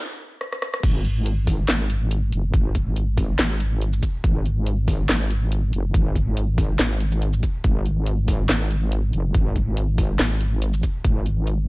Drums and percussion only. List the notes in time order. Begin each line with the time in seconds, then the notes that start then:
0.41 cross-stick
0.52 cross-stick
0.62 cross-stick
0.74 cross-stick
0.83 kick, closed hi-hat, crash
1.05 closed hi-hat
1.26 closed hi-hat
1.47 kick, open hi-hat, shaker
1.68 snare, clap, closed hi-hat
1.90 closed hi-hat
2.11 closed hi-hat
2.32 closed hi-hat
2.54 kick, closed hi-hat
2.75 kick, closed hi-hat
2.96 closed hi-hat
3.17 kick, open hi-hat, shaker
3.39 snare, clap, closed hi-hat
3.60 closed hi-hat
3.81 closed hi-hat
3.93 shaker
4.03 kick, closed hi-hat, shaker
4.24 kick, closed hi-hat
4.45 closed hi-hat
4.67 closed hi-hat
4.88 kick, open hi-hat, shaker
5.09 snare, clap, closed hi-hat
5.31 closed hi-hat
5.52 closed hi-hat
5.73 closed hi-hat
5.94 kick, closed hi-hat
6.15 kick, closed hi-hat
6.37 closed hi-hat
6.58 kick, open hi-hat, shaker
6.79 snare, clap, closed hi-hat
7.00 closed hi-hat
7.12 shaker
7.22 closed hi-hat
7.33 shaker
7.43 kick, closed hi-hat, shaker
7.64 kick, closed hi-hat
7.85 closed hi-hat
8.06 closed hi-hat
8.28 kick, open hi-hat, shaker
8.49 snare, clap, closed hi-hat
8.71 closed hi-hat
8.92 closed hi-hat
9.13 closed hi-hat
9.34 kick, closed hi-hat
9.56 kick, closed hi-hat
9.77 closed hi-hat
9.98 kick, open hi-hat, shaker
10.19 snare, clap, closed hi-hat
10.41 closed hi-hat
10.62 closed hi-hat
10.73 shaker
10.83 kick, closed hi-hat, shaker
11.04 kick, closed hi-hat
11.26 closed hi-hat
11.47 closed hi-hat